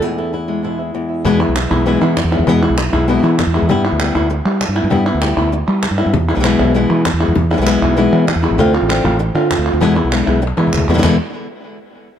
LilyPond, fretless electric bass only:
\new Staff \with { instrumentName = "Fretless electric bass" } { \clef bass \time 4/4 \tempo 4 = 196 r1 | e,8. b,,8. b,,4 e8. e,8 e,16 | e,8. b,,8. b,,4 e8. e,8 e,16 | g,8. d,8. d,4 g8. g,8 g,16 |
g,8. d,8. d,4 g8. g,8 g,16 | e,8. b,,8. b,,4 e8. e,8 e,16 | e,8. b,,8. b,,4 e8. e,8 a,,16 | d,8. a,,8. a,,4 d8. d,8 d,16 |
e,8. b,,8. b,,4 e8 d,8 e,8 | e,8 r2. r8 | }